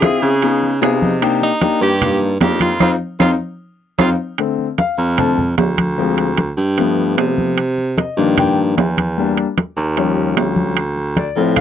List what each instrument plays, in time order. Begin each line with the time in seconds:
Already playing: baritone saxophone D3, tenor saxophone G#4
0.02 grand piano C4 E4 F4 G#4, high conga, high timbale, low timbale, claves
0.22 baritone saxophone C#3, high conga
0.42 grand piano B3 D#4 F4 G#4, high conga, high timbale
0.63 high conga
0.81 baritone saxophone C3, grand piano B3 D#4 F4 G#4 G#5, high conga, high timbale, low timbale, claves
1.02 grand piano D#5, high conga
1.22 grand piano A#3 D4 D#4 G4, high conga, high timbale, claves
1.42 tenor saxophone D#4, high conga
1.61 grand piano A#3 D4 D#4 G4, high conga, high timbale, low timbale
1.81 baritone saxophone G2, tenor saxophone G4, high conga
2.01 grand piano A#3 D4 D#4 F4, high conga, low conga, high timbale, claves
2.21 high conga
2.40 baritone saxophone F2, grand piano A#3 D4 D#4 G4, tenor saxophone G4, high conga, high timbale, low timbale
2.60 tenor saxophone F4, high conga, high timbale, claves
2.80 baritone saxophone F2, grand piano C4 D#4 F4, tenor saxophone F4, high conga, high timbale, claves
3.19 baritone saxophone F2, grand piano C4 D#4 F4, tenor saxophone F4, high conga, high timbale, claves
3.98 baritone saxophone F2, grand piano C4 D#4 F4, tenor saxophone F4, high conga, high timbale, claves
4.38 grand piano D3 A3 C4, high conga, high timbale
4.59 high conga
4.78 grand piano F5, high conga, high timbale, low timbale
4.98 baritone saxophone F2, high conga
5.18 grand piano D3 A3 C4 A5, high conga, low conga, high timbale
5.38 high conga, low conga
5.58 baritone saxophone D2, high conga, high timbale, low timbale
5.78 high conga, high timbale
5.98 grand piano F3 G#3 C4, high conga
6.18 high conga, high timbale
6.37 high conga, high timbale, low timbale
6.57 baritone saxophone G2, high conga
6.78 grand piano F3 A3 B3, high conga, high timbale
6.99 high conga
7.17 baritone saxophone C3, high conga, high timbale, low timbale
7.38 high conga
7.58 high conga, high timbale
7.78 high conga
7.98 grand piano D#5, high conga, high timbale, low timbale
8.17 baritone saxophone G2, grand piano D#3 F3 A#3 D4, high conga
8.37 grand piano G5, high conga, low conga, high timbale
8.58 high conga
8.77 baritone saxophone E2, high conga, high timbale, low timbale
8.98 high conga, high timbale
9.18 grand piano G3 A#3 D4, high conga
9.37 high conga, high timbale
9.58 high conga, high timbale, low timbale
9.76 baritone saxophone D#2, high conga
9.97 grand piano F3 G3 C#4, high conga, high timbale
10.17 high conga
10.36 baritone saxophone D2, high conga, high timbale, low timbale
10.56 high conga
10.76 high conga, high timbale, claves
10.96 high conga
11.16 grand piano D5, high conga, high timbale, low timbale
11.36 baritone saxophone A2, grand piano F3 A3 C4, high conga
11.56 grand piano F5, high conga, low conga, high timbale, claves